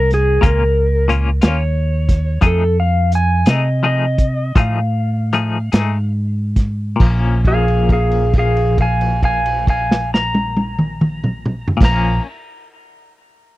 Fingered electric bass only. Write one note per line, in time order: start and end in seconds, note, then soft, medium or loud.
0.00 0.40 C2 medium
0.43 1.39 C#2 medium
1.43 2.40 D#2 medium
2.42 3.43 F2 medium
3.47 4.53 C3 medium
4.56 5.69 A2 medium
5.73 6.96 G#2 medium
7.00 11.66 A#1 medium
11.81 12.18 A#1 medium